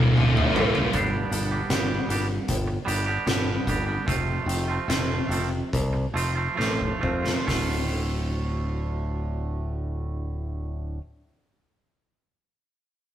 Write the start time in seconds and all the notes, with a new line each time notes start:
Already playing: D1 D2 A2 D3 A3 F4 A5
0.15 D1 D2 A2 D3 A3, mid tom
0.19 F4
0.35 A3 F4, mid tom
0.39 D3
0.55 A1 A2 D3 A3 F4, floor tom
0.74 D3 A3 F4, floor tom
0.93 G1 G2 D3 G3 B3 D4 G4, kick, closed hi-hat
1.31 G1, closed hi-hat
1.51 G3 B3 D4 G4
1.70 G1 G2 D3 G3 B3 D4 G4, snare, closed hi-hat
2.09 G1 G3 B3 D4 G4, closed hi-hat
2.28 muted clean electric guitar stroke
2.48 G1, kick, closed hi-hat
2.67 muted clean electric guitar stroke
2.85 G1 G3 B3 D4 G4, closed hi-hat
3.06 G3 B3 D4 G4
3.26 G1 G2 D3 G3 B3 D4 G4, snare, closed hi-hat
3.67 G1 G3 B3 D4 G4, kick, closed hi-hat
3.86 G3 B3 D4 G4
4.06 F1 F2 C3 F3 A3 C4 F4, kick, closed hi-hat
4.46 F1, closed hi-hat
4.68 F3 A3 C4 F4
4.88 F1 F2 C3 F3 A3 C4 F4, snare, closed hi-hat
5.29 F1 F3 A3 C4 F4, closed hi-hat
5.50 muted clean electric guitar stroke
5.73 C2, kick, closed hi-hat
5.93 muted clean electric guitar stroke
6.14 F1 F3 A3 C4 F4, closed hi-hat
6.36 F3 A3 C4 F4
6.55 A1 F2 C3 F3 A3 C4 F4
6.60 snare
6.81 kick
6.99 F2 F3 A3 C4 F4, kick
7.22 F3 A3 C4 F4
7.26 snare
7.44 D1 D2 A2 D3 A3 F4, kick
7.48 snare, open hi-hat